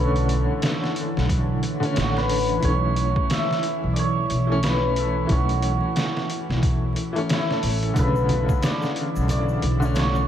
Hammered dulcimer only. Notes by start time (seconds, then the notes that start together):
Already playing: E4 B4 C#5
0.00 A4
1.99 F#4
2.18 B4
2.65 C#5
3.32 E5
3.93 D5
3.99 C#5
4.65 B4
4.98 A4
5.31 F#4
7.33 E4
7.53 A4
7.99 B4
8.65 D5
9.30 D5
9.98 C#5